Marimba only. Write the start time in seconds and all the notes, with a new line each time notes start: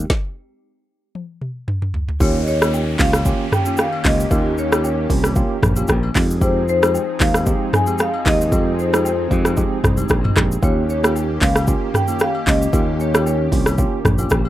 2.22 C#5
2.42 D#5
2.48 C#5
3.01 F5
3.53 G5
3.80 F5
4.06 D#5
4.59 C#5
4.85 C#5
6.43 C5
6.69 C5
7.22 F5
7.75 G#5
8.01 F5
8.28 D#5
8.80 C5
9.07 C5
10.64 C#5
10.90 C#5
11.43 F5
11.96 G5
12.22 F5
12.48 D#5
13.01 C#5
13.27 C#5